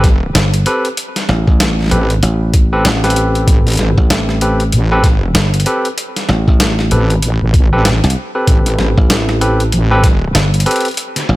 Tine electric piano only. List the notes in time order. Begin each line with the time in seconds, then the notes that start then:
0.67 C4 G4 A4 B4
1.91 C4 G4 A4 B4
2.73 C4 G4 A4 B4
3.04 C4 G4 A4 B4
4.42 C4 G4 A4 B4
4.92 C4 G4 A4 B4
5.66 C4 G4 A4 B4
6.91 C4 G4 A4 B4
7.73 C4 G4 A4 B4
8.35 C4 G4 A4 B4
9.41 C4 G4 A4 B4
9.91 C4 G4 A4 B4
10.66 C4 G4 A4 B4